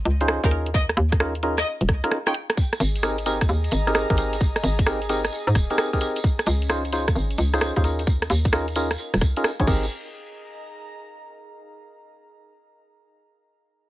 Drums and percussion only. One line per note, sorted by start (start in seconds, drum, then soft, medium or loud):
0.05 closed hi-hat loud
0.21 closed hi-hat medium
0.28 cross-stick loud
0.44 kick loud
0.44 closed hi-hat soft
0.51 closed hi-hat loud
0.66 closed hi-hat medium
0.74 kick loud
0.89 cross-stick medium
0.89 closed hi-hat soft
0.97 closed hi-hat loud
1.12 kick loud
1.12 cross-stick medium
1.12 closed hi-hat medium
1.20 cross-stick loud
1.35 closed hi-hat medium
1.43 closed hi-hat loud
1.58 cross-stick medium
1.58 closed hi-hat medium
1.81 closed hi-hat medium
1.89 kick loud
1.89 cross-stick medium
1.89 closed hi-hat loud
2.04 cross-stick medium
2.04 closed hi-hat medium
2.12 cross-stick medium
2.12 closed hi-hat medium
2.27 cross-stick medium
2.27 closed hi-hat soft
2.34 closed hi-hat loud
2.50 cross-stick medium
2.50 closed hi-hat medium
2.57 kick loud
2.57 tambourine medium
2.73 cross-stick medium
2.73 closed hi-hat soft
2.73 tambourine soft
2.80 closed hi-hat loud
2.80 tambourine medium
2.95 closed hi-hat medium
2.95 tambourine soft
3.03 cross-stick loud
3.03 tambourine medium
3.18 closed hi-hat medium
3.18 tambourine soft
3.26 closed hi-hat loud
3.26 tambourine medium
3.41 kick loud
3.41 cross-stick medium
3.41 closed hi-hat medium
3.41 tambourine soft
3.49 tambourine medium
3.64 closed hi-hat medium
3.64 tambourine soft
3.71 closed hi-hat loud
3.71 tambourine medium
3.87 cross-stick medium
3.87 closed hi-hat medium
3.87 tambourine soft
3.95 cross-stick loud
3.95 tambourine soft
4.10 kick loud
4.10 closed hi-hat soft
4.10 tambourine soft
4.17 closed hi-hat loud
4.17 tambourine medium
4.33 closed hi-hat medium
4.33 tambourine soft
4.41 kick loud
4.41 tambourine medium
4.56 cross-stick medium
4.56 closed hi-hat soft
4.56 tambourine soft
4.64 closed hi-hat loud
4.64 tambourine loud
4.79 kick loud
4.79 closed hi-hat medium
4.79 tambourine soft
4.86 cross-stick loud
4.86 tambourine soft
5.02 closed hi-hat soft
5.02 tambourine soft
5.09 closed hi-hat loud
5.09 tambourine loud
5.25 cross-stick medium
5.25 closed hi-hat medium
5.25 tambourine soft
5.33 tambourine medium
5.47 closed hi-hat medium
5.47 tambourine soft
5.55 kick loud
5.55 cross-stick medium
5.55 closed hi-hat loud
5.55 tambourine medium
5.70 closed hi-hat medium
5.70 tambourine soft
5.78 cross-stick loud
5.78 closed hi-hat medium
5.78 tambourine medium
5.93 kick medium
5.93 closed hi-hat soft
5.93 tambourine soft
6.01 closed hi-hat loud
6.01 tambourine loud
6.16 closed hi-hat medium
6.16 tambourine soft
6.24 kick loud
6.24 tambourine medium
6.39 cross-stick medium
6.39 closed hi-hat soft
6.39 tambourine soft
6.46 closed hi-hat loud
6.46 tambourine loud
6.62 closed hi-hat medium
6.62 tambourine soft
6.70 cross-stick loud
6.70 tambourine medium
6.85 closed hi-hat medium
6.85 tambourine soft
6.93 closed hi-hat loud
6.93 tambourine medium
7.08 kick loud
7.08 cross-stick medium
7.08 closed hi-hat medium
7.08 tambourine soft
7.16 tambourine medium
7.30 closed hi-hat soft
7.30 tambourine soft
7.38 closed hi-hat loud
7.38 tambourine medium
7.54 cross-stick medium
7.54 closed hi-hat medium
7.54 tambourine soft
7.61 cross-stick loud
7.61 tambourine soft
7.76 kick loud
7.76 closed hi-hat soft
7.76 tambourine soft
7.84 closed hi-hat loud
7.84 tambourine medium
7.99 closed hi-hat medium
7.99 tambourine soft
8.07 kick loud
8.07 tambourine medium
8.22 cross-stick medium
8.22 closed hi-hat soft
8.22 tambourine soft
8.30 closed hi-hat loud
8.30 tambourine medium
8.45 kick loud
8.45 closed hi-hat medium
8.45 tambourine soft
8.53 cross-stick loud
8.53 tambourine medium
8.68 closed hi-hat medium
8.68 tambourine soft
8.76 closed hi-hat loud
8.76 tambourine loud
8.91 cross-stick medium
8.91 closed hi-hat medium
8.91 tambourine soft
8.98 tambourine medium
9.14 cross-stick medium
9.14 closed hi-hat medium
9.14 tambourine soft
9.21 kick loud
9.21 cross-stick medium
9.21 closed hi-hat loud
9.21 tambourine medium
9.36 closed hi-hat medium
9.36 tambourine soft
9.44 cross-stick loud
9.44 closed hi-hat medium
9.44 tambourine soft
9.60 kick medium
9.60 closed hi-hat soft
9.60 tambourine soft
9.67 kick loud
9.67 crash medium
9.67 tambourine medium
9.83 tambourine soft